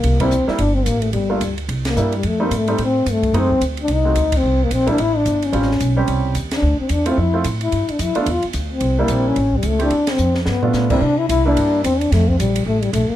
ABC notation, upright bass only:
X:1
M:4/4
L:1/8
Q:"Swing" 1/4=219
K:Cmix
V:1 name="Upright bass" clef=bass
C,,2 D,, z G,,,2 A,,,2 | G,,,2 D,,2 C,,2 G,,2 | F,,2 _A,,2 =A,,2 G,,2 | ^F,,2 D,,2 C,,2 D,,2 |
C,,2 B,,,2 A,,,2 G,,,2 | A,,,2 =B,,,2 ^B,,,2 _E,,2 | D,, z E,,2 F,,2 A,,2 | G,, z F,, z E,, z D,,2 |
C,,2 B,,,2 A,,,2 ^C,,2 | D,,2 F,,2 G,,2 A,,2 | C,2 C,,2 G,,2 E,,2 | F,,2 B,,,2 A,,,2 B,,, z |]